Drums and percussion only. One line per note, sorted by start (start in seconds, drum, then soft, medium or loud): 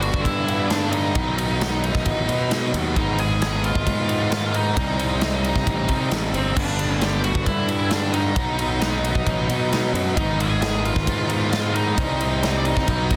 0.02 ride medium
0.14 kick medium
0.25 kick loud
0.25 ride loud
0.48 ride medium
0.70 snare loud
0.70 ride loud
0.93 ride medium
1.15 kick loud
1.15 ride loud
1.38 ride medium
1.61 snare loud
1.61 ride loud
1.84 ride medium
1.95 kick medium
1.95 snare soft
2.06 kick loud
2.06 ride loud
2.29 ride medium
2.51 snare loud
2.51 ride loud
2.74 ride medium
2.96 kick loud
2.96 ride loud
3.19 ride medium
3.42 snare loud
3.42 ride loud
3.64 ride medium
3.75 kick medium
3.87 kick medium
3.87 ride loud
4.09 ride medium
4.32 snare loud
4.32 ride loud
4.54 ride medium
4.77 kick loud
4.77 ride loud
4.99 ride medium
5.21 snare loud
5.21 ride loud
5.44 ride medium
5.56 kick medium
5.56 snare soft
5.67 kick loud
5.67 ride loud
5.89 kick medium
5.89 ride medium
6.11 snare loud
6.11 ride loud
6.34 ride medium
6.57 kick loud
6.57 crash loud
6.79 ride medium
7.01 snare loud
7.01 ride loud
7.24 ride medium
7.35 kick medium
7.46 kick loud
7.46 ride loud
7.69 ride medium
7.91 snare loud
7.91 ride loud
8.14 ride medium
8.36 kick loud
8.36 ride loud
8.59 ride medium
8.82 snare loud
8.82 ride loud
9.05 ride medium
9.15 kick medium
9.27 kick loud
9.27 ride loud
9.50 ride medium
9.73 snare loud
9.73 ride loud
9.95 ride medium
10.17 kick loud
10.17 ride loud
10.40 ride medium
10.62 snare loud
10.62 ride loud
10.85 ride medium
10.96 kick medium
10.96 snare soft
11.07 kick loud
11.07 ride loud
11.30 ride medium
11.53 snare loud
11.53 ride loud
11.76 ride medium
11.98 kick loud
11.98 ride loud
12.21 ride medium
12.43 snare loud
12.43 ride loud
12.65 ride medium
12.77 kick medium
12.77 snare soft
12.88 kick medium
12.88 ride loud
13.11 kick medium
13.11 ride medium